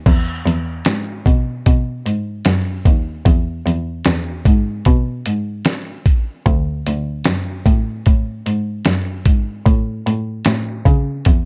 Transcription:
0.06 E2, kick, closed hi-hat, crash
0.46 E2, closed hi-hat
0.85 G#2, snare, closed hi-hat
1.26 B2, kick, closed hi-hat
1.66 B2, kick, closed hi-hat
2.05 G#2, closed hi-hat
2.45 F#2, snare, closed hi-hat
2.86 D#2, kick, closed hi-hat
3.26 E2, kick, closed hi-hat
3.66 E2, closed hi-hat
4.05 E2, snare, closed hi-hat
4.46 G#2, kick, closed hi-hat
4.85 B2, kick, closed hi-hat
5.26 G#2, closed hi-hat
5.65 snare, closed hi-hat
6.06 kick, closed hi-hat
6.46 D2, kick, closed hi-hat
6.86 D2, closed hi-hat
7.24 F#2, snare, closed hi-hat
7.65 A2, kick, closed hi-hat
8.06 A2, kick, closed hi-hat
8.46 G#2, closed hi-hat
8.85 F#2, snare, closed hi-hat
9.26 G#2, kick, closed hi-hat
9.66 A2, kick, closed hi-hat
10.06 A2, closed hi-hat
10.45 A2, snare, closed hi-hat
10.86 C#3, kick, closed hi-hat
11.25 E2, kick, closed hi-hat

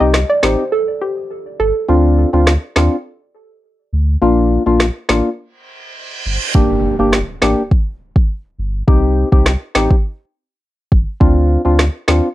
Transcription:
Already playing: downlifter
0.00 C2 C4 D#4 G4 D#5
0.14 cross-stick, snare
0.30 D5
0.43 A1 C4 D#4 G4 C5, cross-stick, snare
0.72 A4
1.01 G4
1.60 G1 A4
1.89 D2 C4 D4 F4
2.33 D2 C4 D4 F4
2.47 cross-stick, snare
2.76 D#2 C4 D4 F4, cross-stick, snare
3.93 D2
4.22 A#1 A#3 D4 F4
4.66 A#1 A#3 D4 F4
4.80 cross-stick, snare
5.09 A1 A#3 D4 F4, cross-stick, snare
5.38 reverse cymbal
6.26 G1
6.55 G1 A#3 D4 G4, kick, impact
6.99 G1 A#3 D4 G4
7.13 cross-stick, snare
7.42 A1 A#3 D4 G4, cross-stick, snare
7.71 kick
8.16 kick
8.59 G1
8.88 C2 C4 D#4 G4, kick
9.32 C2 C4 D#4 G4, kick
9.46 cross-stick, snare
9.75 A1 C4 D#4 G4, cross-stick, snare
9.90 kick
10.92 G1, kick
11.20 D2 C4 D4 F4, kick
11.65 D2 C4 D4 F4
11.79 cross-stick, snare
12.08 D#2 C4 D4 F4, cross-stick, snare

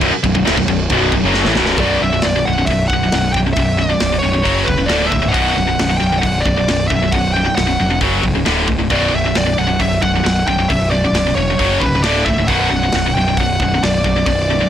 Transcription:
0.01 B0 B1 F#2, kick, crash
0.12 muted distorted electric guitar stroke, muted overdriven electric guitar stroke, muted picked electric bass stroke
0.23 B0 B1 F#2, kick, crash
0.35 B0 B1 F#2, kick
0.45 D1 D2 A2, snare, crash
0.57 B0 B1 F#2, kick
0.68 B0 B1 F#2, kick, crash
0.90 B0 B1 F#2 B2, kick, crash
1.12 B0 B1 F#2, kick, crash
1.24 F#1 F#2 C#3 F#3
1.34 snare
1.45 A1 A2 E3, snare
1.55 B0 B1 F#2 B2, snare
1.66 snare
1.76 B0 B1 B2 D5, kick, open hi-hat
1.80 F#2
2.02 B0 B1 F#2 E5
2.13 B1 F#2
2.22 B0 B1 F#2 D5, snare, open hi-hat
2.36 B1 F#2
2.45 B0 B1 F#2 F#5
2.58 B1 F#2
2.66 B0 B1 E5, kick, open hi-hat
2.71 F#2
2.88 B0 F#5, kick
2.93 B1 F#2
3.03 B1 F#2
3.12 B0 B1 F#2, snare, open hi-hat
3.33 B0 F#2 G5, kick
3.37 B1
3.46 B1 F#2
3.53 B1 E5, kick, open hi-hat
3.57 B0 F#2
3.77 B1 F#2 D5
3.89 B1 F#2
4.00 B0 B1 F#2, snare, open hi-hat
4.13 B1 F#2
4.19 F#2 C#5
4.23 B0 B1
4.33 B1 F#2
4.43 F#1 F#2 C#3 F#3, kick, open hi-hat
4.64 E1 F#2 C#3 B4, kick
4.78 F#2 C#3
4.86 D1 D2 A2 D3 D5, snare, open hi-hat
5.07 E5
5.12 C#1 D2 A2, kick
5.22 D2 A2
5.29 B1 F#5
5.33 B0 F#2 B2, kick, open hi-hat
5.50 F#5
5.56 B0 B1 F#2
5.67 B1 F#2
5.79 B0 B1 F#2, snare, open hi-hat
5.90 B1 F#2
5.97 F#2 G5
6.02 B0 B1
6.13 B1 F#2
6.19 B1 F#2 F#5
6.23 B0, kick, open hi-hat
6.40 D5
6.46 B0 B1 F#2, kick
6.57 B1 F#2
6.68 B0 B1 F#2, snare, open hi-hat
6.88 B0 B1 F#2 E5, kick
7.02 B1 F#2
7.12 B0 B1 F#2 F#5, kick, open hi-hat
7.33 B1 F#2 G5
7.45 B1 F#2
7.55 B0 B1 F#2 F#5, snare, open hi-hat
7.67 B1 F#2
7.80 F1 B1 F#2
7.90 B1 F#2
8.01 F#1 F#2 C#3 F#3, kick, open hi-hat
8.22 C#1 F#2 C#3, kick
8.35 F#2 C#3
8.45 D1 D2 A2 D3, snare, open hi-hat
8.67 C#1 D2 A2, kick
8.79 D2 A2
8.90 B0 B1 F#2 B2 D5, kick, open hi-hat
9.13 B0 B1 F#2 E5
9.26 B1 F#2
9.35 B0 B1 F#2 D5, snare, open hi-hat
9.46 B1 F#2
9.58 B0 B1 F#2 F#5
9.67 B1 F#2
9.80 B0 B1 F#2 E5, kick, open hi-hat
10.02 B0 B1 F#2 F#5, kick
10.16 B1 F#2
10.24 B0 B1 F#2, snare, open hi-hat
10.47 B0 B1 F#2 G5, kick
10.59 B1 F#2
10.68 B0 B1 F#2 E5, kick, open hi-hat
10.91 B1 F#2 D5
11.04 B1 F#2
11.13 B0 B1 F#2, snare, open hi-hat
11.26 B1 F#2
11.35 E1 B1 F#2 C#5
11.50 B1 F#2
11.59 F#1 F#2 C#3 F#3, kick, open hi-hat
11.80 C#1 F#2 C#3 B4, kick
11.95 F#2 C#3
12.02 D1 D2 A2 D3 D5, snare, open hi-hat
12.25 C#1 D2 A2 E5, kick
12.38 D2 A2
12.47 B0 B1 F#2 B2 F#5, kick, open hi-hat
12.70 B0 B1 F#2 F#5
12.83 B1 F#2
12.92 B0 B1 F#2, snare, open hi-hat
13.06 B1 F#2
13.15 B0 B1 F#2 G5
13.28 B1 F#2
13.37 B0 B1 F#2 F#5, kick, open hi-hat
13.60 B0 B1 F#2, kick
13.74 B1 F#2
13.83 B0 B1 F#2 D5, snare, open hi-hat
14.04 B0 B1 F#2, kick
14.16 B1 F#2
14.26 B0 B1 F#2 D5, kick, open hi-hat
14.50 B1 F#2
14.61 B1 F#2

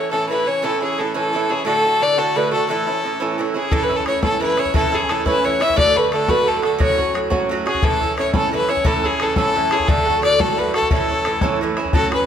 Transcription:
Already playing: A2 E3 C#4 E4 C#5
0.11 A2 E3 C#4 E4 A4
0.29 A2 E3 C#4 E4 B4
0.46 E3 C#4 E4 C#5
0.62 A2 E3 C#4 E4 A4
0.80 E3 C#4 E4 G#4
0.98 A2 E3 C#4 E4 A4
1.14 A2 E3 C#4 E4 A4
1.33 A2 E3 C#4 E4
1.49 E3 C#4 E4 G#4
1.65 A2 D3 A3 F#4 A4
1.85 D3 A3 F#4
2.00 A2 D3 A3 F#4 D5
2.17 A2 D3 A3 F#4 A4
2.36 A2 D3 A3 F#4 B4
2.52 D3 A3 F#4 A4
2.69 A2 E3 C#4 E4 A4
2.87 E3 C#4 E4
3.04 A2 E3 C#4 E4
3.20 A2 E3 C#4 E4
3.38 A2 E3 C#4 E4
3.54 E3 C#4 E4 G#4
3.72 A2 E3 C#4 E4 A4, bodhran
3.81 B4, bodhran
3.89 E3 C#4 E4, bodhran
3.96 A4
4.06 A2 E3 C#4 E4 C#5, bodhran
4.22 A2 E3 C#4 E4 A4, bodhran
4.40 A2 E3 C#4 E4 B4
4.57 E3 C#4 E4 C#5, bodhran
4.65 bodhran
4.74 A2 E3 C#4 E4 A4, bodhran
4.83 bodhran
4.92 E3 C#4 E4 G#4, bodhran
5.09 A2 E3 C#4 E4 A4, bodhran
5.26 A2 E3 C#4 E4 B4, bodhran
5.44 A2 E3 C#4 E4 C#5
5.60 E3 C#4 E4 E5, bodhran
5.70 bodhran
5.76 A2 D3 A3 F#4 D5, bodhran
5.87 bodhran
5.95 D3 A3 F#4 B4, bodhran
6.12 A2 D3 A3 F#4 A4, bodhran
6.28 A2 D3 A3 F#4 B4, bodhran
6.46 A2 D3 A3 F#4 A4
6.62 D3 A3 F#4 A4, bodhran
6.79 A2 F#3 C#4 F#4 C#5, bodhran
6.90 bodhran
6.98 F#3 C#4 F#4, bodhran
7.14 A2 F#3 C#4 F#4, bodhran
7.30 A2 F#3 C#4 F#4, bodhran
7.49 A2 F#3 C#4 F#4
7.66 F#3 C#4 F#4 G#4, bodhran
7.75 bodhran
7.82 A2 E3 C#4 E4 A4, bodhran
7.92 bodhran
8.01 E3 C#4 E4, bodhran
8.17 A2 E3 C#4 E4 C#5, bodhran
8.33 A2 E3 C#4 E4 A4, bodhran
8.51 A2 E3 C#4 E4 B4
8.69 E3 C#4 E4 C#5, bodhran
8.77 bodhran
8.84 A2 E3 C#4 E4 A4, bodhran
8.94 bodhran
9.03 E3 C#4 E4 G#4, bodhran
9.20 A2 E3 C#4 E4 A4, bodhran
9.36 A2 E3 C#4 E4 A4, bodhran
9.55 A2 E3 C#4 E4
9.71 C#4 E4 G#4, bodhran
9.75 E3
9.80 bodhran
9.88 A2 D3 A3 F#4 A4, bodhran
9.98 bodhran
10.06 D3 A3 F#4, bodhran
10.22 A2 D3 A3 F#4 D5, bodhran
10.39 A2 D3 A3 F#4 A4, bodhran
10.57 A2 D3 A3 F#4 B4
10.74 D3 A3 F#4 A4, bodhran
10.82 bodhran
10.91 A2 E3 C#4 E4 A4, bodhran
10.99 bodhran
11.08 E3 C#4 E4, bodhran
11.25 A2 E3 C#4 E4, bodhran
11.41 A2 E3 C#4 E4, bodhran
11.61 A2 E3 C#4 E4
11.77 E3 C#4 E4, bodhran
11.85 bodhran
11.93 A2 F#3 C#4 F#4 A4, bodhran
12.11 F#3 C#4 F#4 B4, bodhran

